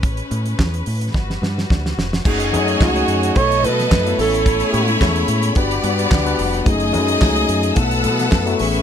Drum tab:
CC |----------------|x---------------|----------------|----------------|
HH |xxxx-xox--------|-xxx-xxxxxxx-xox|xxxx-xxxxxxx-xox|xxxx-xxxxxxx-xox|
CP |----x-----------|----x-------x---|----x-------x---|----x-------x---|
SD |----o---oooooooo|----o------oo---|----o-------o---|----o------oo---|
BD |o---o---o---o---|o---o---o---o---|o---o---o---o---|o---o---o---o---|